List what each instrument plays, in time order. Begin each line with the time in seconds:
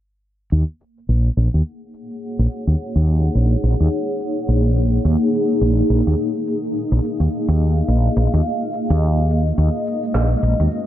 0.52 fretless electric bass D#2, ambient pad A#3
0.81 shaker
0.98 ambient pad D#4, shaker
1.06 fretless electric bass A#1, ambient pad F#5, shaker
1.22 ambient pad G#4
1.37 fretless electric bass A#1, shaker
1.45 ambient pad C#5
1.54 fretless electric bass D#2, shaker
1.65 shaker
1.94 shaker
2.10 shaker
2.22 shaker
2.39 fretless electric bass A#1
2.50 shaker
2.67 fretless electric bass D#2, shaker
2.79 shaker
2.96 fretless electric bass D#2
3.07 shaker
3.24 shaker
3.35 fretless electric bass A#1, shaker
3.63 fretless electric bass A#1, shaker
3.80 fretless electric bass D#2, shaker
3.92 shaker
4.20 shaker
4.37 shaker
4.48 fretless electric bass A#1, shaker
4.77 shaker
4.93 shaker
5.05 fretless electric bass D#2, shaker
5.33 shaker
5.50 shaker
5.55 ambient pad D#5
5.61 fretless electric bass A#1, shaker
5.90 fretless electric bass A#1, shaker
6.07 fretless electric bass D#2, shaker
6.19 shaker
6.29 ambient pad F5
6.47 shaker
6.64 shaker
6.75 shaker
6.92 fretless electric bass A#1
7.04 shaker
7.20 fretless electric bass D#2, shaker
7.32 shaker
7.48 fretless electric bass D#2
7.60 shaker
7.77 shaker
7.88 fretless electric bass A#1, shaker
8.16 fretless electric bass A#1, shaker
8.33 fretless electric bass D#2, shaker
8.45 shaker
8.73 shaker
8.90 fretless electric bass D#2, shaker
9.02 shaker
9.30 shaker
9.47 shaker
9.58 fretless electric bass D#2, ambient pad G#3, shaker
9.86 ambient pad B4, shaker
9.98 ambient pad C#4
10.03 ambient pad F#4, shaker
10.14 fretless electric bass A#1, snare
10.43 fretless electric bass A#1, shaker
10.60 fretless electric bass D#2, shaker
10.71 shaker